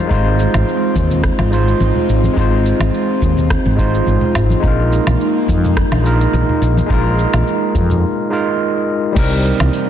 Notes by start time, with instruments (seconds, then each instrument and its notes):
Already playing: tine electric piano G#3 D#4 F4 C5, analog synth pad G#3 C4 F4
0.07 fretless electric bass G#1, tine electric piano G#3 D#4, kick
0.11 tine electric piano F4 C5, shaker
0.40 shaker
0.54 fretless electric bass G#1, high conga, low woodblock, shaker
0.68 shaker
0.95 fretless electric bass D#2, kick, high conga, shaker
1.11 low conga, shaker
1.24 kick, cross-stick, shaker
1.39 fretless electric bass G#1, high conga, low woodblock
1.51 tine electric piano G#3 D#4 F4 C5, shaker
1.68 shaker
1.80 fretless electric bass G#1, high conga, shaker
1.95 low conga
2.09 fretless electric bass G#1, shaker
2.24 high conga, shaker
2.34 fretless electric bass G#1, tine electric piano G#3 D#4, kick
2.38 tine electric piano F4 C5, shaker
2.66 shaker
2.80 fretless electric bass G#1, high conga, low woodblock, shaker
2.94 shaker
3.22 fretless electric bass D#2, kick, shaker
3.37 low conga, shaker
3.50 kick, cross-stick, shaker
3.66 fretless electric bass G#1, high conga
3.76 tine electric piano G#3 D#4 F4 C5, kick, shaker
3.95 shaker
4.06 fretless electric bass G#1, high conga, shaker
4.21 low conga
4.35 fretless electric bass G#1, kick, low woodblock, shaker
4.50 high conga, shaker
4.60 fretless electric bass A#1, tine electric piano G#3 D#4, analog synth pad A#3 D#4, kick
4.65 tine electric piano F4 A#4, shaker
4.93 shaker
5.07 fretless electric bass A#1, high conga, low woodblock, shaker
5.21 shaker
5.48 fretless electric bass F2, kick, high conga, shaker
5.64 low conga, shaker
5.77 kick, cross-stick, shaker
5.92 fretless electric bass A#1, high conga, low woodblock
6.03 tine electric piano G#3 D#4 F4 A#4, shaker
6.21 shaker
6.33 fretless electric bass A#1, high conga, shaker
6.49 low conga
6.62 fretless electric bass A#1, shaker
6.77 high conga, shaker
6.86 fretless electric bass A#1, tine electric piano G#3 D#4, kick
6.91 tine electric piano F4 A#4, shaker
7.19 shaker
7.34 fretless electric bass A#1, high conga, low woodblock, shaker
7.47 shaker
7.75 fretless electric bass F2, kick, high conga, shaker
7.90 low conga, shaker
8.30 tine electric piano G#3 D#4 F4 A#4
9.12 analog synth pad C3 A#3 D#4, tine electric piano G3 C4, kick, high bongo
9.16 fretless electric bass C2, tine electric piano D#4 A#4, open hi-hat, crash, shaker
9.33 shaker
9.46 shaker
9.60 fretless electric bass C2, open hi-hat, high conga, low woodblock, shaker
9.73 open hi-hat, shaker